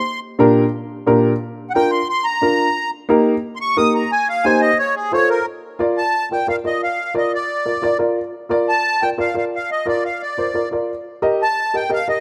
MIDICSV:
0, 0, Header, 1, 3, 480
1, 0, Start_track
1, 0, Key_signature, -2, "major"
1, 0, Tempo, 338600
1, 84, Time_signature, 4, 2, 24, 8
1, 17298, End_track
2, 0, Start_track
2, 0, Title_t, "Accordion"
2, 0, Program_c, 0, 21
2, 0, Note_on_c, 0, 84, 88
2, 281, Note_off_c, 0, 84, 0
2, 2411, Note_on_c, 0, 78, 69
2, 2447, Note_off_c, 0, 78, 0
2, 2473, Note_on_c, 0, 79, 105
2, 2708, Note_off_c, 0, 79, 0
2, 2708, Note_on_c, 0, 84, 81
2, 2945, Note_off_c, 0, 84, 0
2, 2967, Note_on_c, 0, 84, 101
2, 3179, Note_on_c, 0, 82, 92
2, 3194, Note_off_c, 0, 84, 0
2, 4116, Note_off_c, 0, 82, 0
2, 5046, Note_on_c, 0, 84, 78
2, 5082, Note_off_c, 0, 84, 0
2, 5115, Note_on_c, 0, 85, 105
2, 5345, Note_off_c, 0, 85, 0
2, 5348, Note_on_c, 0, 87, 104
2, 5581, Note_off_c, 0, 87, 0
2, 5594, Note_on_c, 0, 82, 76
2, 5824, Note_off_c, 0, 82, 0
2, 5841, Note_on_c, 0, 80, 102
2, 6067, Note_off_c, 0, 80, 0
2, 6079, Note_on_c, 0, 77, 94
2, 6295, Note_on_c, 0, 80, 97
2, 6306, Note_off_c, 0, 77, 0
2, 6533, Note_off_c, 0, 80, 0
2, 6540, Note_on_c, 0, 75, 102
2, 6776, Note_off_c, 0, 75, 0
2, 6783, Note_on_c, 0, 73, 94
2, 7017, Note_off_c, 0, 73, 0
2, 7027, Note_on_c, 0, 68, 83
2, 7259, Note_off_c, 0, 68, 0
2, 7273, Note_on_c, 0, 73, 99
2, 7502, Note_off_c, 0, 73, 0
2, 7509, Note_on_c, 0, 70, 95
2, 7740, Note_off_c, 0, 70, 0
2, 8470, Note_on_c, 0, 81, 105
2, 8914, Note_off_c, 0, 81, 0
2, 8960, Note_on_c, 0, 79, 76
2, 9177, Note_off_c, 0, 79, 0
2, 9199, Note_on_c, 0, 77, 94
2, 9304, Note_off_c, 0, 77, 0
2, 9445, Note_on_c, 0, 75, 86
2, 9660, Note_off_c, 0, 75, 0
2, 9686, Note_on_c, 0, 77, 87
2, 10124, Note_off_c, 0, 77, 0
2, 10170, Note_on_c, 0, 75, 76
2, 10383, Note_off_c, 0, 75, 0
2, 10414, Note_on_c, 0, 74, 84
2, 11305, Note_off_c, 0, 74, 0
2, 12318, Note_on_c, 0, 81, 112
2, 12791, Note_on_c, 0, 79, 83
2, 12809, Note_off_c, 0, 81, 0
2, 12899, Note_off_c, 0, 79, 0
2, 13044, Note_on_c, 0, 77, 92
2, 13262, Note_off_c, 0, 77, 0
2, 13288, Note_on_c, 0, 77, 71
2, 13393, Note_off_c, 0, 77, 0
2, 13546, Note_on_c, 0, 77, 87
2, 13754, Note_off_c, 0, 77, 0
2, 13769, Note_on_c, 0, 75, 84
2, 13985, Note_off_c, 0, 75, 0
2, 14011, Note_on_c, 0, 74, 81
2, 14227, Note_off_c, 0, 74, 0
2, 14243, Note_on_c, 0, 77, 79
2, 14486, Note_off_c, 0, 77, 0
2, 14489, Note_on_c, 0, 74, 75
2, 15153, Note_off_c, 0, 74, 0
2, 16191, Note_on_c, 0, 81, 101
2, 16668, Note_on_c, 0, 79, 81
2, 16670, Note_off_c, 0, 81, 0
2, 16878, Note_off_c, 0, 79, 0
2, 16914, Note_on_c, 0, 77, 94
2, 17122, Note_off_c, 0, 77, 0
2, 17138, Note_on_c, 0, 75, 77
2, 17298, Note_off_c, 0, 75, 0
2, 17298, End_track
3, 0, Start_track
3, 0, Title_t, "Upright piano"
3, 0, Program_c, 1, 0
3, 548, Note_on_c, 1, 46, 92
3, 552, Note_on_c, 1, 62, 86
3, 556, Note_on_c, 1, 67, 84
3, 563, Note_on_c, 1, 70, 102
3, 891, Note_off_c, 1, 46, 0
3, 892, Note_off_c, 1, 62, 0
3, 895, Note_off_c, 1, 67, 0
3, 898, Note_off_c, 1, 70, 0
3, 1510, Note_on_c, 1, 46, 89
3, 1514, Note_on_c, 1, 62, 79
3, 1517, Note_on_c, 1, 67, 80
3, 1521, Note_on_c, 1, 70, 99
3, 1851, Note_off_c, 1, 46, 0
3, 1852, Note_off_c, 1, 62, 0
3, 1854, Note_off_c, 1, 67, 0
3, 1856, Note_off_c, 1, 70, 0
3, 2483, Note_on_c, 1, 65, 72
3, 2485, Note_on_c, 1, 62, 73
3, 2493, Note_on_c, 1, 70, 90
3, 2816, Note_off_c, 1, 65, 0
3, 2817, Note_off_c, 1, 62, 0
3, 2820, Note_off_c, 1, 70, 0
3, 3424, Note_on_c, 1, 62, 71
3, 3436, Note_on_c, 1, 65, 71
3, 3438, Note_on_c, 1, 70, 79
3, 3765, Note_off_c, 1, 62, 0
3, 3771, Note_off_c, 1, 65, 0
3, 3772, Note_off_c, 1, 70, 0
3, 4376, Note_on_c, 1, 58, 97
3, 4382, Note_on_c, 1, 63, 84
3, 4389, Note_on_c, 1, 67, 83
3, 4393, Note_on_c, 1, 70, 100
3, 4719, Note_off_c, 1, 58, 0
3, 4722, Note_off_c, 1, 63, 0
3, 4726, Note_off_c, 1, 67, 0
3, 4728, Note_off_c, 1, 70, 0
3, 5340, Note_on_c, 1, 63, 68
3, 5342, Note_on_c, 1, 58, 74
3, 5346, Note_on_c, 1, 70, 83
3, 5353, Note_on_c, 1, 67, 66
3, 5680, Note_off_c, 1, 63, 0
3, 5681, Note_off_c, 1, 58, 0
3, 5683, Note_off_c, 1, 70, 0
3, 5687, Note_off_c, 1, 67, 0
3, 6304, Note_on_c, 1, 58, 84
3, 6309, Note_on_c, 1, 63, 80
3, 6317, Note_on_c, 1, 67, 72
3, 6323, Note_on_c, 1, 72, 99
3, 6641, Note_off_c, 1, 58, 0
3, 6644, Note_off_c, 1, 63, 0
3, 6648, Note_off_c, 1, 67, 0
3, 6651, Note_off_c, 1, 72, 0
3, 7255, Note_on_c, 1, 65, 75
3, 7264, Note_on_c, 1, 69, 75
3, 7270, Note_on_c, 1, 72, 84
3, 7597, Note_off_c, 1, 65, 0
3, 7601, Note_off_c, 1, 69, 0
3, 7604, Note_off_c, 1, 72, 0
3, 8210, Note_on_c, 1, 65, 89
3, 8217, Note_on_c, 1, 70, 69
3, 8228, Note_on_c, 1, 74, 92
3, 8470, Note_off_c, 1, 65, 0
3, 8473, Note_off_c, 1, 70, 0
3, 8479, Note_off_c, 1, 74, 0
3, 8945, Note_on_c, 1, 65, 56
3, 8956, Note_on_c, 1, 70, 57
3, 8965, Note_on_c, 1, 74, 62
3, 9029, Note_off_c, 1, 65, 0
3, 9035, Note_off_c, 1, 70, 0
3, 9039, Note_off_c, 1, 74, 0
3, 9174, Note_on_c, 1, 65, 62
3, 9187, Note_on_c, 1, 70, 65
3, 9189, Note_on_c, 1, 74, 71
3, 9264, Note_off_c, 1, 65, 0
3, 9271, Note_off_c, 1, 70, 0
3, 9272, Note_off_c, 1, 74, 0
3, 9413, Note_on_c, 1, 65, 59
3, 9426, Note_on_c, 1, 70, 54
3, 9427, Note_on_c, 1, 74, 60
3, 9672, Note_off_c, 1, 65, 0
3, 9679, Note_off_c, 1, 70, 0
3, 9679, Note_off_c, 1, 74, 0
3, 10127, Note_on_c, 1, 65, 67
3, 10129, Note_on_c, 1, 70, 68
3, 10138, Note_on_c, 1, 74, 82
3, 10389, Note_off_c, 1, 65, 0
3, 10390, Note_off_c, 1, 70, 0
3, 10395, Note_off_c, 1, 74, 0
3, 10853, Note_on_c, 1, 70, 54
3, 10858, Note_on_c, 1, 65, 60
3, 10860, Note_on_c, 1, 74, 60
3, 10945, Note_off_c, 1, 70, 0
3, 10947, Note_off_c, 1, 65, 0
3, 10948, Note_off_c, 1, 74, 0
3, 11085, Note_on_c, 1, 65, 70
3, 11097, Note_on_c, 1, 70, 67
3, 11106, Note_on_c, 1, 74, 93
3, 11181, Note_off_c, 1, 65, 0
3, 11187, Note_off_c, 1, 70, 0
3, 11191, Note_off_c, 1, 74, 0
3, 11324, Note_on_c, 1, 70, 68
3, 11327, Note_on_c, 1, 65, 72
3, 11338, Note_on_c, 1, 74, 76
3, 11589, Note_off_c, 1, 70, 0
3, 11590, Note_off_c, 1, 65, 0
3, 11596, Note_off_c, 1, 74, 0
3, 12040, Note_on_c, 1, 65, 80
3, 12052, Note_on_c, 1, 70, 82
3, 12064, Note_on_c, 1, 74, 100
3, 12307, Note_off_c, 1, 65, 0
3, 12313, Note_off_c, 1, 70, 0
3, 12319, Note_off_c, 1, 74, 0
3, 12791, Note_on_c, 1, 65, 53
3, 12794, Note_on_c, 1, 70, 54
3, 12802, Note_on_c, 1, 74, 66
3, 12875, Note_off_c, 1, 65, 0
3, 12877, Note_off_c, 1, 70, 0
3, 12881, Note_off_c, 1, 74, 0
3, 13010, Note_on_c, 1, 65, 72
3, 13015, Note_on_c, 1, 70, 62
3, 13020, Note_on_c, 1, 74, 74
3, 13105, Note_off_c, 1, 65, 0
3, 13108, Note_off_c, 1, 70, 0
3, 13110, Note_off_c, 1, 74, 0
3, 13246, Note_on_c, 1, 65, 60
3, 13252, Note_on_c, 1, 70, 53
3, 13256, Note_on_c, 1, 74, 68
3, 13512, Note_off_c, 1, 65, 0
3, 13515, Note_off_c, 1, 70, 0
3, 13516, Note_off_c, 1, 74, 0
3, 13972, Note_on_c, 1, 65, 72
3, 13979, Note_on_c, 1, 70, 62
3, 13988, Note_on_c, 1, 74, 82
3, 14235, Note_off_c, 1, 65, 0
3, 14239, Note_off_c, 1, 70, 0
3, 14243, Note_off_c, 1, 74, 0
3, 14709, Note_on_c, 1, 65, 59
3, 14719, Note_on_c, 1, 70, 52
3, 14721, Note_on_c, 1, 72, 65
3, 14796, Note_off_c, 1, 65, 0
3, 14801, Note_off_c, 1, 70, 0
3, 14802, Note_off_c, 1, 72, 0
3, 14941, Note_on_c, 1, 65, 60
3, 14953, Note_on_c, 1, 70, 61
3, 14957, Note_on_c, 1, 74, 65
3, 15032, Note_off_c, 1, 65, 0
3, 15038, Note_off_c, 1, 70, 0
3, 15040, Note_off_c, 1, 74, 0
3, 15186, Note_on_c, 1, 65, 62
3, 15204, Note_on_c, 1, 70, 63
3, 15207, Note_on_c, 1, 74, 70
3, 15432, Note_off_c, 1, 65, 0
3, 15440, Note_off_c, 1, 70, 0
3, 15442, Note_off_c, 1, 74, 0
3, 15907, Note_on_c, 1, 67, 86
3, 15908, Note_on_c, 1, 70, 82
3, 15917, Note_on_c, 1, 75, 98
3, 16165, Note_off_c, 1, 67, 0
3, 16165, Note_off_c, 1, 70, 0
3, 16170, Note_off_c, 1, 75, 0
3, 16639, Note_on_c, 1, 67, 57
3, 16643, Note_on_c, 1, 70, 56
3, 16646, Note_on_c, 1, 75, 63
3, 16723, Note_off_c, 1, 67, 0
3, 16725, Note_off_c, 1, 70, 0
3, 16727, Note_off_c, 1, 75, 0
3, 16862, Note_on_c, 1, 70, 67
3, 16867, Note_on_c, 1, 67, 64
3, 16873, Note_on_c, 1, 75, 70
3, 16955, Note_off_c, 1, 70, 0
3, 16957, Note_off_c, 1, 67, 0
3, 16961, Note_off_c, 1, 75, 0
3, 17121, Note_on_c, 1, 67, 52
3, 17121, Note_on_c, 1, 70, 57
3, 17131, Note_on_c, 1, 75, 64
3, 17298, Note_off_c, 1, 67, 0
3, 17298, Note_off_c, 1, 70, 0
3, 17298, Note_off_c, 1, 75, 0
3, 17298, End_track
0, 0, End_of_file